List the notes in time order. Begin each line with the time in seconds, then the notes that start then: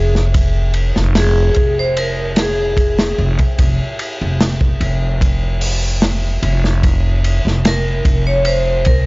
Already playing: F1 G#4
0.15 snare
0.34 kick, ride
0.74 ride
0.96 F1, snare
1.15 G#4, snare, ride
1.54 F1, kick, ride
1.79 C5
1.97 A#4, ride
2.36 G#4, snare, ride
2.77 kick, ride
2.99 snare, ride
3.18 F1
3.39 kick, ride
3.58 F1, kick, ride
3.99 ride
4.21 F1
4.41 snare, ride
4.61 kick
4.80 F1, ride
5.21 kick, ride
5.61 open hi-hat
6.02 snare, ride
6.42 F1, ride
6.64 snare
6.83 kick, ride
7.24 ride
7.45 F1, snare
7.65 A#4, snare, ride
8.05 F1, kick, ride
8.27 C#5
8.45 C5, ride
8.85 C2 A#4, kick, ride